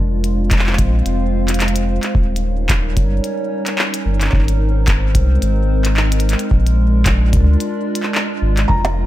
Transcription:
Already playing: sub bass F1, ambient pad G#3 C4 F4 C5 F5
0.24 closed hi-hat
0.51 kick, clap, closed hi-hat
0.59 clap
0.67 clap
0.73 clap
0.79 sub bass A#1, kick, closed hi-hat
1.06 sub bass F1, closed hi-hat
1.48 clap, closed hi-hat
1.54 closed hi-hat
1.60 clap, closed hi-hat
1.68 closed hi-hat
1.76 closed hi-hat
2.03 clap, closed hi-hat
2.15 sub bass D#1, ambient pad G3 C#4 D#4 A#4 C#5, kick
2.36 closed hi-hat
2.69 kick, clap, closed hi-hat
2.97 sub bass G1, kick, closed hi-hat
3.24 closed hi-hat
3.67 clap, closed hi-hat
3.79 clap
3.94 closed hi-hat
4.06 sub bass G1
4.21 clap, closed hi-hat
4.24 clap
4.29 ambient pad C5, clap
4.33 sub bass G#1, ambient pad G#3 C4, kick, clap
4.38 clap
4.42 clap
4.48 closed hi-hat
4.88 kick, clap, closed hi-hat
5.15 sub bass C2, kick, closed hi-hat
5.42 sub bass G#1, closed hi-hat
5.85 clap, closed hi-hat
5.97 clap
6.12 closed hi-hat
6.20 closed hi-hat
6.29 clap, closed hi-hat
6.39 closed hi-hat
6.51 sub bass A#1, ambient pad D4 F4 D5, kick
6.67 closed hi-hat
7.06 kick, clap, closed hi-hat
7.33 sub bass D2, kick, closed hi-hat
7.37 kick
7.41 kick
7.44 kick
7.60 closed hi-hat
7.95 closed hi-hat
8.03 clap
8.15 clap
8.42 sub bass G#1
8.57 clap, closed hi-hat
8.68 sub bass F1, ambient pad C4 C5 F5, felt piano A#5, kick
8.85 closed hi-hat, percussion blips

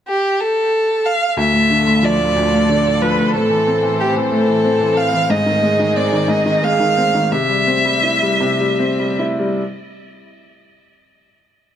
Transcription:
0.08 violin G4
0.40 violin A4
1.06 violin F5
1.37 upright piano D2, string section D2 D3 A3 F4 A4, violin E5
1.53 upright piano A2
1.70 upright piano D3
1.87 upright piano A2
2.03 upright piano F3, violin D5
2.19 upright piano A2
2.36 upright piano D2
2.52 upright piano A2
2.69 upright piano D3
2.85 upright piano A2
3.02 upright piano F3, violin B4
3.18 upright piano A2
3.34 upright piano A2, string section A2 E3 C4 C5, violin A4
3.50 upright piano E3
3.67 upright piano C4
3.83 upright piano E3
4.00 violin G4
4.16 upright piano E3
4.31 upright piano A2, violin A4
4.47 upright piano E3
4.64 upright piano C4
4.80 upright piano E3
4.97 violin F5
5.13 upright piano E3
5.29 string section G#2 D#3 D#4 G#4, upright piano G#2, violin D#5
5.46 upright piano D#3
5.62 upright piano G#3
5.79 upright piano D#3
5.96 upright piano C4, violin D5
6.12 upright piano D#3
6.28 upright piano G#2, violin D#5
6.46 upright piano D#3
6.63 upright piano G#3, violin F5
6.80 upright piano D#3
6.97 upright piano C4
7.14 upright piano D#3
7.32 upright piano C3, violin E5
7.49 upright piano G3
7.67 upright piano C4
7.85 upright piano G3
8.03 upright piano E4
8.22 upright piano G3
8.41 upright piano C3
8.60 upright piano G3
8.79 upright piano C4
8.99 upright piano G3
9.19 upright piano E4
9.39 upright piano G3

